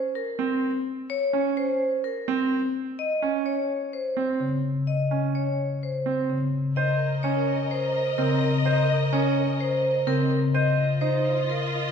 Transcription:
0.15 0.46 A#4 medium
0.39 0.69 C4 medium
1.10 1.40 C#5 medium
1.33 1.64 C#4 medium
1.57 1.88 C5 medium
2.04 2.35 A#4 medium
2.28 2.58 C4 medium
2.99 3.29 D#5 medium
3.22 3.53 C#4 medium
3.46 3.76 C#5 medium
3.93 4.24 C5 medium
4.17 4.47 C4 medium
4.40 4.71 C#3 medium
4.87 5.18 D#5 medium
5.11 5.42 C#4 soft
5.35 5.66 C#5 soft
5.83 6.13 C5 soft
6.06 6.36 C4 soft
6.30 6.60 C#3 medium
6.76 10.27 A#4 medium
6.76 7.07 C5 medium
6.76 7.07 D#5 medium
6.76 10.27 D#5 medium
7.23 7.55 C#4 medium
7.23 7.54 C#5 medium
7.71 8.02 C5 medium
8.18 8.49 C#3 medium
8.18 8.49 C4 medium
8.18 8.49 A#4 medium
8.65 8.96 C5 medium
8.65 8.96 D#5 medium
9.13 9.43 C#4 medium
9.13 9.43 C#5 medium
9.60 9.91 C5 medium
10.07 10.38 C#3 medium
10.07 10.38 C4 medium
10.07 10.38 A#4 medium
10.54 11.92 F4 medium
10.54 10.85 C5 medium
10.54 11.92 D#5 medium
10.54 10.85 D#5 medium
11.01 11.32 D#4 medium
11.01 11.32 C5 medium
11.49 11.80 A#4 medium

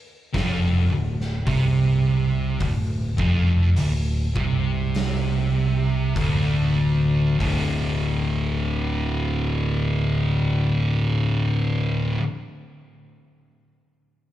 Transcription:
0.33 0.86 F1 loud
0.33 0.88 F2 loud
0.33 kick loud
0.33 snare loud
0.33 open hi-hat medium
0.90 1.43 D1 medium
0.90 1.35 D2 medium
1.20 snare soft
1.45 2.56 C2 medium
1.45 2.58 C3 loud
1.45 kick loud
1.45 open hi-hat medium
2.60 3.14 D1 medium
2.60 3.06 D2 medium
2.60 kick medium
2.60 open hi-hat medium
3.17 3.72 F1 loud
3.17 3.74 F2 loud
3.17 kick loud
3.76 4.32 D1 medium
3.76 4.23 D2 medium
3.76 open hi-hat medium
4.34 6.12 C2 medium
4.34 6.13 C3 medium
4.34 kick loud
4.95 snare loud
4.95 open hi-hat medium
6.15 7.36 D1 medium
6.15 7.37 D2 loud
6.15 kick loud
6.15 open hi-hat medium
7.39 12.14 D1 loud
7.39 12.17 D2 medium
7.39 12.18 A2 loud
7.39 12.20 D3 loud
7.39 kick medium
7.39 floor tom medium
7.39 open hi-hat medium

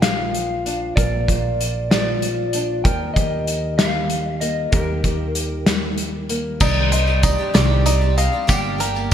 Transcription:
0.00 0.93 A#1 medium
0.00 0.93 A#2 medium
0.00 1.90 F3 soft
0.00 0.65 D4 soft
0.00 0.94 F4 soft
0.00 0.97 A#4 soft
0.00 0.95 F5 medium
0.00 snare medium
0.00 closed hi-hat medium
0.34 closed hi-hat soft
0.66 0.93 D4 soft
0.66 closed hi-hat soft
0.96 2.82 A#1 medium
0.96 2.81 A#2 medium
0.96 2.85 A#4 medium
0.96 1.89 D5 medium
0.96 kick medium
0.96 closed hi-hat medium
1.28 2.82 F4 soft
1.28 kick medium
1.28 closed hi-hat medium
1.61 closed hi-hat medium
1.91 2.85 F3 medium
1.91 2.84 D5 medium
1.91 snare medium
1.91 closed hi-hat medium
2.22 closed hi-hat soft
2.53 2.82 D4 soft
2.53 closed hi-hat soft
2.84 4.69 D#2 medium
2.84 4.69 D#3 medium
2.84 4.69 A#4 medium
2.84 3.13 G5 medium
2.84 kick medium
2.84 closed hi-hat medium
3.14 4.73 G4 soft
3.14 3.74 D#5 medium
3.14 kick medium
3.14 closed hi-hat medium
3.47 closed hi-hat soft
3.78 5.66 G3 soft
3.78 4.40 F5 medium
3.78 snare medium
3.78 closed hi-hat medium
4.10 closed hi-hat soft
4.41 6.28 A#3 soft
4.41 4.73 D#5 medium
4.41 closed hi-hat soft
4.72 6.57 D#2 medium
4.72 6.57 D#3 medium
4.72 5.04 G4 soft
4.72 5.94 A#4 medium
4.72 kick loud
4.72 closed hi-hat medium
5.04 6.58 G4 soft
5.04 kick medium
5.04 closed hi-hat soft
5.35 closed hi-hat medium
5.66 6.57 G3 soft
5.66 snare medium
5.66 closed hi-hat medium
5.98 closed hi-hat medium
6.29 6.61 A#3 soft
6.29 closed hi-hat soft
6.60 7.33 C2 medium
6.60 6.92 C3 medium
6.60 6.92 D#3 medium
6.60 6.90 G3 medium
6.60 6.91 C4 medium
6.60 6.92 D4 medium
6.60 7.22 D#4 medium
6.60 6.92 G4 medium
6.60 6.91 D5 medium
6.60 kick loud
6.60 crash medium
6.60 tambourine medium
6.92 7.08 G3 medium
6.92 7.07 C4 medium
6.92 7.07 D4 medium
6.92 7.05 G4 medium
6.92 8.17 C5 medium
6.92 7.24 D#5 medium
6.92 closed hi-hat medium
7.07 7.39 G3 soft
7.07 7.39 C4 soft
7.07 7.38 D4 soft
7.07 7.37 G4 soft
7.07 tambourine soft
7.23 7.85 D#4 medium
7.23 7.83 D5 medium
7.23 kick medium
7.23 closed hi-hat medium
7.23 tambourine loud
7.38 7.53 G3 soft
7.38 7.54 C4 soft
7.38 7.54 D4 soft
7.38 7.54 G4 soft
7.54 8.27 C2 medium
7.54 7.86 C3 medium
7.54 7.86 D#3 medium
7.54 7.84 G3 medium
7.54 7.85 C4 medium
7.54 7.86 D4 medium
7.54 7.86 G4 medium
7.54 8.49 D5 medium
7.54 snare loud
7.54 closed hi-hat medium
7.54 tambourine soft
7.85 8.02 G3 medium
7.85 8.01 C4 medium
7.85 8.00 D4 medium
7.85 8.49 D#4 medium
7.85 8.00 G4 medium
7.85 8.16 D5 medium
7.85 closed hi-hat medium
7.85 tambourine medium
8.01 8.33 G3 soft
8.01 8.33 C4 soft
8.01 8.32 D4 soft
8.01 8.31 G4 medium
8.18 8.49 D#5 medium
8.18 8.48 F5 medium
8.18 closed hi-hat medium
8.18 tambourine soft
8.32 8.47 G3 soft
8.32 8.48 C4 soft
8.32 8.47 D4 soft
8.32 8.48 G4 soft
8.47 9.14 G1 medium
8.47 8.80 G2 medium
8.47 8.80 D3 medium
8.47 8.77 G3 medium
8.47 8.78 A#3 medium
8.47 8.79 D4 medium
8.47 8.80 G4 medium
8.47 9.11 G4 medium
8.47 9.14 G5 medium
8.47 kick loud
8.47 closed hi-hat medium
8.47 tambourine loud
8.78 8.95 G3 medium
8.78 8.95 A#3 medium
8.78 8.94 D4 medium
8.78 8.94 G4 medium
8.78 9.14 A#4 medium
8.78 closed hi-hat medium
8.95 9.14 G3 soft
8.95 9.14 A#3 soft
8.95 9.14 D4 soft
8.95 9.14 G4 soft
8.95 tambourine soft

